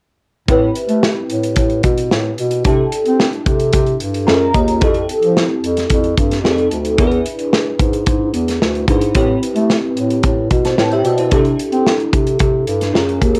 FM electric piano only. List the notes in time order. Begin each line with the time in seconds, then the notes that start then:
0.49 C4 E4 G4 B4
2.65 D4 E4 G4 A4
4.27 C#4 F4 G#4 A4 A#5
4.34 A#4
4.55 D#5
4.81 C4 E4 G4 A4
6.44 C4 D#4 G4 G#4
6.52 A4
6.98 D4 E4 G#4 A#4
7.07 B4
8.88 D4 E4 G#4 B4
9.14 C4 E4 G4 B4
10.65 C5 A5
10.79 B4 G5
10.93 G4 E5
11.05 D5
11.19 E4 C5
11.31 D4 E4 G4 A4
12.93 C#4 F4 G#4 A#4